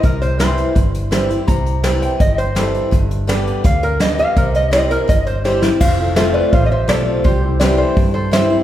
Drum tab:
CC |--------|--------|--------|--------|
HH |xxxxxxxx|xxxxxxxx|xxxxxxxx|xxxxxx--|
SD |--o---o-|--o---o-|--o---o-|--o---oo|
BD |o---o---|o---o---|o---o---|o---o---|

CC |x-------|--------|
HH |--o-o-o-|o-o-o-o-|
SD |--o---o-|--o---o-|
BD |o---o---|o---o---|